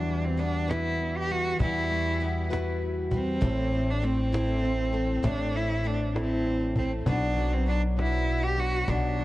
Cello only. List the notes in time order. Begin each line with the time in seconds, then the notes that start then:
Already playing: D4
0.25 C4
0.40 D4
0.70 E4
1.17 G4
1.31 F#4
1.62 E4
3.15 C4
3.91 D4
4.04 C4
5.26 D4
5.56 E4
5.87 D4
6.18 C4
6.78 C4
7.08 D4
7.53 C4
7.69 D4
8.00 E4
8.43 G4
8.59 F#4
8.89 D4